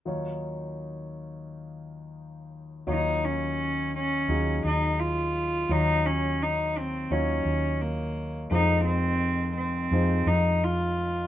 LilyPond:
<<
  \new Staff \with { instrumentName = "Grand piano" } { \time 4/4 \key ees \dorian \tempo 4 = 85 <ges ees' f' des''>1 | <ges ees' f' des''>4. r8 <ges ees' f' aes'>4. r8 | <ges ees' f' des''>4. r8 <ges ees' f' des''>4. r8 | <aes ees' f' c''>4. r8 <aes ees' f' c''>4. r8 | }
  \new Staff \with { instrumentName = "Grand piano" } { \clef bass \time 4/4 \key ees \dorian <ees, ees>1 | <ees, ees>1 | <ees, ees>1 | <f,, f,>1 | }
  \new Staff \with { instrumentName = "Cello" } { \time 4/4 \key ees \dorian r1 | ees'8 des'4 des'4 ees'8 f'4 | ees'8 des'8 ees'8 c'8 des'4 bes8. r16 | ees'8 c'4 c'4 ees'8 f'4 | }
  \new Staff \with { instrumentName = "Fretless electric bass" } { \clef bass \time 4/4 \key ees \dorian r1 | ees,2 ees,8 ees,4. | ees,2 ees,8 ees,4. | f,2 f,8 f,4. | }
>>